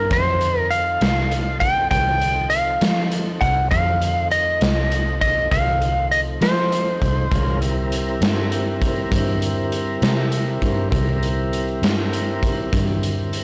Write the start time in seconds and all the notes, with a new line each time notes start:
Already playing: A#4
0.09 F2 F#3 C#4 E4 A#4 C5, kick, closed hi-hat
0.41 F3 C4 D#4 A4, closed hi-hat
0.60 A#4
0.71 F5, closed hi-hat
1.01 C2, snare, closed hi-hat
1.31 closed hi-hat
1.60 G5, kick, closed hi-hat
1.91 C2 G5, kick, closed hi-hat
2.21 closed hi-hat
2.50 F5, closed hi-hat
2.81 F3, snare, closed hi-hat
3.12 closed hi-hat
3.41 C2 F#5, kick, closed hi-hat
3.71 F2 F3 A3 C4 D#4 F5, kick, closed hi-hat
4.02 closed hi-hat
4.31 D#5, closed hi-hat
4.61 C2, snare, closed hi-hat
4.92 closed hi-hat
5.21 D#5, kick, closed hi-hat
5.51 C2 F5, kick, closed hi-hat
5.82 closed hi-hat
6.11 D#5, closed hi-hat
6.41 F3 C5, snare, closed hi-hat
6.72 closed hi-hat
7.02 C2, kick, closed hi-hat
7.31 C2 G#3 C#4 F4 A#4, kick, closed hi-hat
7.61 G3 C4 E4 A#4, closed hi-hat
7.92 closed hi-hat
8.21 G2, snare, closed hi-hat
8.52 closed hi-hat
8.82 kick, closed hi-hat
9.12 G2, kick, closed hi-hat
9.42 closed hi-hat
9.72 closed hi-hat
10.02 C3, snare, closed hi-hat
10.32 closed hi-hat
10.62 G2, kick, closed hi-hat
10.90 C2 G3 C4 E4 A#4, kick, closed hi-hat
11.23 closed hi-hat
11.53 closed hi-hat
11.82 G2, snare, closed hi-hat
12.13 closed hi-hat
12.43 kick, closed hi-hat
12.73 G2, kick, closed hi-hat
13.03 closed hi-hat
13.33 closed hi-hat